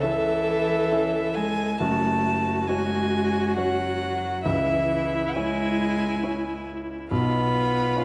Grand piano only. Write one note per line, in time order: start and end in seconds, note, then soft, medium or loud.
0.00 1.76 C#2 medium
0.00 1.76 C#3 medium
0.00 0.87 C#4 soft
0.00 0.88 E4 soft
0.00 0.88 A4 medium
0.92 1.76 C#4 soft
0.92 1.76 E4 soft
0.92 1.76 A4 soft
1.80 4.41 F#1 medium
1.80 4.41 F#2 medium
2.69 3.52 C#4 soft
2.69 3.53 F#4 soft
2.69 3.53 C#5 medium
3.57 4.41 C#4 soft
3.57 4.41 F#4 soft
3.57 4.41 C#5 soft
4.46 7.07 C#2 medium
4.46 7.08 C#3 medium
5.36 6.19 C#4 soft
5.36 6.19 E4 soft
5.36 6.20 C#5 medium
6.23 7.07 C#4 soft
6.23 7.07 E4 soft
6.23 7.07 C#5 soft
7.11 8.04 B1 medium
7.11 8.04 B2 medium
7.96 8.04 C#4 soft
7.96 8.04 F4 soft
7.96 8.04 C#5 soft